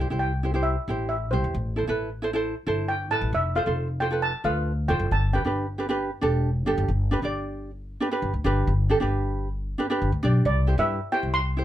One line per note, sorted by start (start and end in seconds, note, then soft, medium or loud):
0.01 0.07 C5 medium
0.10 0.74 C2 medium
0.10 0.31 E4 medium
0.10 0.31 G4 medium
0.10 0.32 C5 medium
0.19 0.67 G5 medium
0.43 0.50 E4 medium
0.43 0.51 G4 medium
0.43 0.51 C5 medium
0.54 0.75 E4 medium
0.54 0.75 G4 medium
0.54 0.75 C5 medium
0.63 1.08 E5 medium
0.88 1.33 A1 medium
0.88 1.15 E4 medium
0.88 1.16 G4 medium
0.88 1.16 C5 medium
1.09 1.19 E5 medium
1.31 1.42 C2 loud
1.31 1.55 E4 medium
1.31 1.55 G4 medium
1.31 2.39 C5 medium
1.31 1.56 C5 medium
1.44 1.53 E2 medium
1.54 1.82 A1 medium
1.76 1.84 E4 medium
1.76 1.84 A4 medium
1.76 1.85 C5 medium
1.87 2.52 A1 medium
1.87 2.08 E4 medium
1.87 2.09 A4 medium
1.87 2.09 B4 medium
2.22 2.29 E4 medium
2.22 2.29 A4 medium
2.22 2.30 C5 medium
2.33 2.53 E4 medium
2.33 2.54 A4 medium
2.33 2.54 C5 medium
2.67 3.10 G1 medium
2.67 2.93 E4 medium
2.67 2.94 A4 medium
2.67 2.94 C5 loud
2.88 3.12 G5 medium
3.10 3.20 A1 loud
3.10 3.33 E4 medium
3.10 3.33 A4 medium
3.10 3.34 B4 medium
3.10 3.34 A5 loud
3.21 3.31 A1 medium
3.33 3.60 F1 medium
3.33 3.57 E5 loud
3.55 3.62 F4 medium
3.55 3.63 A4 medium
3.55 3.63 C5 medium
3.55 4.02 F5 medium
3.66 4.30 F1 medium
3.66 3.86 F4 medium
3.66 3.87 A4 medium
3.66 3.87 C5 medium
4.00 4.07 F4 medium
4.00 4.07 A4 medium
4.00 4.08 C5 medium
4.00 4.23 G5 medium
4.11 4.31 F4 medium
4.11 4.31 A4 medium
4.11 4.32 B4 medium
4.22 4.32 A5 loud
4.44 4.90 D2 medium
4.44 4.71 F4 medium
4.44 4.71 A4 medium
4.44 4.72 B4 medium
4.44 4.91 F5 medium
4.88 4.98 F1 loud
4.88 5.11 F4 medium
4.88 5.11 A4 medium
4.88 5.12 C5 medium
4.88 4.99 G5 medium
5.00 5.09 F#1 medium
5.11 5.39 G1 medium
5.11 5.22 A5 loud
5.33 5.40 D4 medium
5.33 5.41 G4 medium
5.33 5.41 B4 medium
5.33 5.75 G5 medium
5.45 6.08 G1 medium
5.45 5.65 D4 medium
5.45 5.65 G4 medium
5.45 5.66 B4 medium
5.78 5.85 D4 medium
5.78 5.85 G4 medium
5.78 5.86 B4 medium
5.89 6.09 D4 medium
5.89 6.09 G4 medium
5.89 6.10 B4 loud
6.21 6.66 E1 medium
6.21 6.49 D4 medium
6.21 6.49 G4 medium
6.21 6.49 A4 medium
6.66 6.76 G1 loud
6.66 6.89 D4 medium
6.66 6.89 G4 medium
6.66 6.89 A4 loud
6.78 6.87 G1 loud
6.88 7.16 G1 medium
7.11 7.18 D4 medium
7.11 7.18 G4 medium
7.11 7.19 B4 medium
7.22 7.95 G1 medium
7.22 7.69 D4 medium
7.22 7.70 G4 medium
7.22 7.70 D5 medium
8.00 8.07 D4 medium
8.00 8.08 G4 medium
8.00 8.08 B4 loud
8.11 8.32 D4 medium
8.11 8.32 G4 medium
8.11 8.32 B4 medium
8.22 8.32 G1 medium
8.34 8.43 D2 medium
8.44 8.63 G1 medium
8.44 8.71 D4 medium
8.44 8.72 G4 medium
8.44 8.72 B4 loud
8.67 8.95 G1 loud
8.89 8.96 D4 medium
8.89 8.97 G4 medium
8.89 8.97 A4 medium
9.00 9.74 G1 medium
9.00 9.47 D4 medium
9.00 9.47 G4 medium
9.00 9.48 B4 medium
9.78 9.85 D4 medium
9.78 9.85 G4 medium
9.78 9.86 B4 loud
9.90 10.10 D4 medium
9.90 10.10 G4 medium
9.90 10.11 B4 loud
10.02 10.10 G1 medium
10.12 10.21 D2 medium
10.23 10.41 B1 medium
10.23 10.45 D4 medium
10.23 10.46 G4 medium
10.23 10.46 D5 loud
10.45 10.73 C2 loud
10.45 10.80 D5 loud
10.67 10.74 E4 medium
10.67 10.74 G4 medium
10.67 10.75 C5 medium
10.78 10.96 G2 medium
10.78 10.99 E4 medium
10.78 10.99 G4 medium
10.78 10.99 B4 medium
10.78 11.13 E5 medium
11.12 11.39 E4 medium
11.12 11.39 G4 medium
11.12 11.40 C5 medium
11.12 11.35 G5 loud
11.23 11.64 C2 medium
11.34 11.64 C6 loud
11.57 11.64 E4 medium
11.57 11.64 G4 medium
11.57 11.64 C5 medium